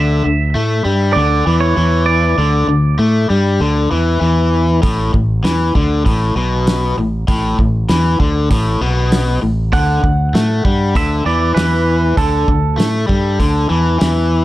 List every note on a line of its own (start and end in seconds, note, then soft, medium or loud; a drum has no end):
0.00 0.23 D2 medium
0.00 0.23 D3 medium
0.00 1.20 E5 medium
0.24 0.54 D2 medium
0.24 0.49 D3 medium
0.55 0.84 A2 medium
0.55 0.84 A3 medium
0.85 1.14 G2 medium
0.85 1.15 G3 medium
1.13 1.45 D2 medium
1.13 1.46 D3 medium
1.13 1.60 D5 medium
1.47 1.75 E2 medium
1.47 1.76 E3 medium
1.60 2.04 C#5 medium
1.77 2.35 E2 medium
1.77 2.37 E3 medium
2.06 4.48 D5 medium
2.38 2.67 D2 medium
2.38 2.68 D3 medium
2.67 2.97 D2 medium
2.67 2.93 D3 medium
2.99 3.28 A2 medium
2.99 3.29 A3 medium
3.30 3.59 G2 medium
3.30 3.60 G3 medium
3.60 3.89 D2 medium
3.60 3.90 D3 medium
3.91 4.20 E2 medium
3.91 4.20 E3 medium
4.21 4.79 E2 medium
4.21 4.82 E3 medium
4.82 5.12 A1 medium
4.82 5.12 A2 medium
4.82 kick medium
4.82 open hi-hat soft
5.13 5.42 A1 medium
5.13 5.38 A2 medium
5.13 kick medium
5.44 5.73 E2 medium
5.44 5.74 E3 medium
5.44 snare medium
5.44 open hi-hat soft
5.75 6.04 D2 medium
5.75 6.05 D3 medium
5.75 kick medium
6.05 6.34 A1 medium
6.05 6.35 A2 medium
6.05 kick medium
6.05 open hi-hat soft
6.36 6.93 B1 medium
6.36 6.97 B2 medium
6.67 snare loud
6.67 open hi-hat soft
6.98 7.26 A1 medium
6.98 7.22 A2 medium
7.28 7.57 A1 medium
7.28 7.58 A2 loud
7.28 kick medium
7.28 open hi-hat soft
7.58 7.87 A1 medium
7.58 7.83 A2 medium
7.58 kick medium
7.89 8.18 E2 medium
7.89 8.19 E3 medium
7.89 snare medium
7.89 open hi-hat soft
8.20 8.48 D2 medium
8.20 8.50 D3 medium
8.20 kick medium
8.51 8.79 A1 medium
8.51 8.81 A2 medium
8.51 kick medium
8.51 open hi-hat soft
8.81 9.38 B1 medium
8.81 9.41 B2 medium
9.12 snare medium
9.12 open hi-hat soft
9.42 9.71 A1 medium
9.42 9.67 A2 medium
9.73 10.02 D2 medium
9.73 10.02 D3 medium
9.73 10.96 F#5 loud
9.73 kick medium
9.73 open hi-hat soft
10.03 10.32 D2 medium
10.03 10.28 D3 medium
10.03 kick medium
10.34 10.62 A2 medium
10.34 10.64 A3 medium
10.34 snare medium
10.34 open hi-hat soft
10.65 10.93 G2 medium
10.65 10.95 G3 medium
10.65 kick medium
10.95 11.24 D2 medium
10.95 11.25 D3 medium
10.95 11.24 E5 medium
10.95 kick medium
10.95 open hi-hat soft
11.26 11.54 E2 medium
11.26 11.55 E3 medium
11.26 11.54 D5 medium
11.54 12.14 E2 medium
11.54 12.17 E3 medium
11.54 12.19 B4 medium
11.54 snare loud
11.54 open hi-hat soft
12.17 12.46 D2 medium
12.17 12.47 D3 medium
12.17 13.97 A4 medium
12.17 kick medium
12.17 open hi-hat soft
12.48 12.77 D2 medium
12.48 12.73 D3 medium
12.48 kick medium
12.78 13.07 A2 medium
12.78 13.07 A3 medium
12.78 snare medium
12.78 open hi-hat soft
13.07 13.38 G2 medium
13.07 13.38 G3 medium
13.07 kick medium
13.39 13.68 D2 medium
13.39 13.69 D3 medium
13.39 kick medium
13.39 open hi-hat soft
13.69 13.99 E2 medium
13.69 13.99 E3 medium
14.00 14.45 E2 medium
14.00 14.45 E3 medium
14.00 snare medium
14.00 open hi-hat soft